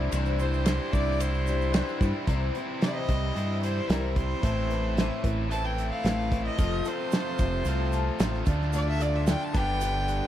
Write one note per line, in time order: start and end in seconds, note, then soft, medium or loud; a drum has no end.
0.00 0.10 E3 medium
0.00 0.12 G3 soft
0.00 0.11 C4 medium
0.00 0.12 D4 soft
0.00 2.26 D4 medium
0.00 0.13 E4 medium
0.00 2.26 E4 medium
0.00 2.25 G4 medium
0.00 0.13 C5 medium
0.00 2.26 C5 medium
0.12 0.78 C2 medium
0.12 0.40 C3 medium
0.12 0.40 E3 loud
0.12 0.40 G3 medium
0.12 0.38 C4 loud
0.12 0.40 D4 loud
0.12 0.39 E4 medium
0.12 0.38 C5 medium
0.12 ride bell medium
0.12 shaker loud
0.26 shaker soft
0.39 0.93 G3 soft
0.39 0.65 C4 medium
0.39 0.93 D4 soft
0.39 0.92 E4 medium
0.39 0.94 C5 medium
0.39 0.92 C5 medium
0.39 shaker medium
0.53 shaker soft
0.65 1.19 C3 medium
0.65 1.20 E3 loud
0.65 0.93 G3 loud
0.65 0.92 C4 medium
0.65 0.90 E4 loud
0.65 snare loud
0.65 ride bell medium
0.65 shaker loud
0.92 1.81 C2 medium
0.92 1.48 G3 soft
0.92 1.73 C4 medium
0.92 1.47 D4 medium
0.92 1.46 E4 medium
0.92 1.46 C5 medium
0.92 1.22 D5 loud
0.92 kick medium
0.92 shaker medium
1.20 2.01 C5 medium
1.20 ride bell medium
1.20 shaker loud
1.34 shaker soft
1.47 1.72 G3 soft
1.47 1.73 D4 soft
1.47 1.74 E4 soft
1.47 1.74 C5 medium
1.47 shaker medium
1.61 shaker soft
1.72 2.25 E3 medium
1.72 2.01 G3 medium
1.72 1.99 C4 medium
1.72 2.00 D4 medium
1.72 2.00 E4 medium
1.72 snare loud
1.72 ride bell medium
1.72 shaker medium
1.76 1.99 C5 medium
1.88 shaker soft
2.01 2.12 G2 medium
2.01 2.27 G3 soft
2.01 2.26 C4 medium
2.01 2.28 D4 medium
2.01 2.28 E4 medium
2.01 2.27 C5 medium
2.01 kick medium
2.01 shaker medium
2.27 2.50 C2 medium
2.27 2.55 C3 medium
2.27 2.55 E3 medium
2.27 2.55 G3 medium
2.27 4.41 C4 medium
2.27 2.55 C4 medium
2.27 4.40 E4 medium
2.27 2.54 E4 medium
2.27 4.41 G4 medium
2.27 4.41 C5 medium
2.27 2.54 C5 medium
2.27 kick loud
2.27 closed hi-hat medium
2.55 2.80 G3 soft
2.55 2.81 C4 medium
2.55 2.81 E4 medium
2.55 2.81 C5 medium
2.55 closed hi-hat medium
2.81 3.08 C3 medium
2.81 3.08 E3 medium
2.81 3.08 G3 medium
2.81 3.09 C4 medium
2.81 3.08 E4 medium
2.81 3.08 C5 medium
2.81 3.60 D#5 medium
2.81 snare medium
2.81 closed hi-hat medium
3.09 3.30 C2 medium
3.09 3.34 G3 soft
3.09 3.35 C4 soft
3.09 3.36 E4 medium
3.09 3.35 C5 medium
3.09 kick medium
3.09 closed hi-hat medium
3.34 3.79 G2 medium
3.34 4.41 C3 medium
3.34 4.41 E3 medium
3.34 3.88 G3 medium
3.34 3.90 C4 medium
3.34 3.89 E4 medium
3.34 3.90 C5 medium
3.34 closed hi-hat medium
3.63 3.92 C5 medium
3.63 closed hi-hat medium
3.89 4.33 C2 medium
3.89 4.16 C3 medium
3.89 4.16 E3 medium
3.89 4.16 G3 medium
3.89 4.16 C4 medium
3.89 4.16 E4 medium
3.89 4.16 A#4 medium
3.89 4.15 C5 medium
3.89 snare loud
3.89 closed hi-hat loud
4.16 4.43 G3 soft
4.16 4.43 C4 soft
4.16 4.43 E4 soft
4.16 4.43 C5 medium
4.16 5.21 C5 loud
4.16 kick medium
4.16 closed hi-hat medium
4.43 5.09 A1 medium
4.43 4.70 A2 medium
4.43 4.70 E3 medium
4.43 6.57 E3 medium
4.43 4.70 A3 medium
4.43 4.70 C4 medium
4.43 6.56 C4 medium
4.43 4.69 E4 medium
4.43 6.57 A4 medium
4.43 4.69 B4 medium
4.43 kick loud
4.43 closed hi-hat medium
4.70 4.96 A3 soft
4.70 4.96 C4 soft
4.70 4.97 E4 soft
4.70 4.97 B4 soft
4.70 closed hi-hat medium
4.97 5.24 A2 loud
4.97 5.24 E3 medium
4.97 5.24 A3 medium
4.97 5.23 C4 medium
4.97 5.23 E4 loud
4.97 5.22 B4 loud
4.97 snare loud
4.97 closed hi-hat medium
5.23 5.90 A1 medium
5.23 5.49 A3 soft
5.23 5.49 C4 medium
5.23 5.50 E4 medium
5.23 5.50 B4 medium
5.23 kick medium
5.23 closed hi-hat medium
5.49 6.56 A2 medium
5.49 6.56 E3 medium
5.49 6.03 A3 soft
5.49 6.03 C4 medium
5.49 6.03 E4 medium
5.49 6.03 B4 medium
5.49 5.66 A5 loud
5.49 closed hi-hat medium
5.65 5.90 G5 medium
5.78 closed hi-hat medium
5.91 6.43 F5 medium
6.03 6.48 A1 medium
6.03 6.31 A2 medium
6.03 6.31 E3 medium
6.03 6.31 A3 medium
6.03 6.31 C4 medium
6.03 6.30 E4 medium
6.03 6.30 B4 medium
6.03 snare loud
6.03 closed hi-hat medium
6.31 6.57 A3 soft
6.31 6.58 C4 soft
6.31 6.58 E4 soft
6.31 6.58 B4 medium
6.31 kick medium
6.31 closed hi-hat medium
6.46 6.89 D#5 medium
6.56 6.80 F1 loud
6.56 7.63 F2 medium
6.56 7.64 C3 medium
6.56 6.85 F3 medium
6.56 6.85 A3 medium
6.56 8.44 C4 medium
6.56 6.86 C4 medium
6.56 8.44 F4 medium
6.56 6.86 F4 medium
6.56 8.45 A4 medium
6.56 6.84 A4 medium
6.56 8.44 C5 medium
6.56 kick loud
6.56 closed hi-hat medium
6.56 shaker loud
6.85 7.11 C4 soft
6.85 7.12 F4 soft
6.85 7.12 A4 soft
6.85 8.44 C5 loud
6.85 snare soft
6.85 closed hi-hat medium
6.85 shaker medium
7.12 7.39 F3 medium
7.12 7.39 A3 medium
7.12 7.39 C4 medium
7.12 7.39 F4 medium
7.12 7.38 A4 medium
7.12 snare loud
7.12 closed hi-hat medium
7.12 shaker loud
7.38 7.61 F1 medium
7.38 7.66 C4 soft
7.38 7.66 F4 soft
7.38 7.66 A4 medium
7.38 kick medium
7.38 closed hi-hat medium
7.38 shaker medium
7.64 8.09 C2 medium
7.64 8.44 F2 medium
7.64 8.44 C3 medium
7.64 8.44 F3 medium
7.64 8.19 A3 medium
7.64 8.19 C4 medium
7.64 8.19 F4 medium
7.64 8.20 A4 medium
7.64 closed hi-hat medium
7.64 shaker loud
7.92 closed hi-hat medium
7.92 shaker medium
8.20 8.42 A1 medium
8.20 8.47 F3 medium
8.20 8.47 A3 medium
8.20 8.47 C4 loud
8.20 8.46 F4 medium
8.20 8.44 A4 loud
8.20 snare loud
8.20 closed hi-hat loud
8.20 shaker loud
8.34 snare soft
8.44 9.34 D2 medium
8.44 9.51 D3 medium
8.44 9.52 A3 medium
8.44 9.54 D4 medium
8.44 8.72 D4 soft
8.44 8.72 F4 medium
8.44 9.53 F4 medium
8.44 8.73 A4 medium
8.44 9.53 A4 medium
8.44 9.53 D5 medium
8.44 kick medium
8.44 closed hi-hat medium
8.44 shaker medium
8.61 snare soft
8.73 9.00 D3 medium
8.73 9.00 A3 medium
8.73 9.00 D4 medium
8.73 9.00 F4 medium
8.73 8.99 A4 medium
8.73 8.87 D5 medium
8.73 closed hi-hat medium
8.73 shaker medium
8.89 9.03 E5 loud
9.00 9.27 D4 soft
9.00 9.27 F4 soft
9.00 9.27 A4 medium
9.00 9.17 D5 medium
9.00 closed hi-hat medium
9.00 shaker medium
9.16 9.27 E5 medium
9.27 9.54 D3 medium
9.27 9.54 A3 medium
9.27 9.55 D4 medium
9.27 9.55 F4 medium
9.27 9.54 A4 medium
9.27 9.45 G5 medium
9.27 snare loud
9.27 closed hi-hat medium
9.27 shaker loud
9.43 9.58 A5 medium
9.53 10.20 G1 medium
9.53 10.27 G2 medium
9.53 10.27 D3 loud
9.53 10.27 G3 medium
9.53 10.27 B3 loud
9.53 10.27 D4 medium
9.53 9.80 D4 medium
9.53 9.81 G4 medium
9.53 10.27 G4 medium
9.53 9.81 B4 medium
9.53 10.27 B4 medium
9.53 10.27 D5 medium
9.53 10.27 G5 loud
9.53 kick loud
9.53 closed hi-hat medium
9.53 shaker medium
9.81 10.27 G3 medium
9.81 10.27 D4 medium
9.81 10.27 G4 medium
9.81 10.27 B4 medium
9.81 closed hi-hat medium
9.81 shaker loud
10.08 closed hi-hat medium
10.08 shaker medium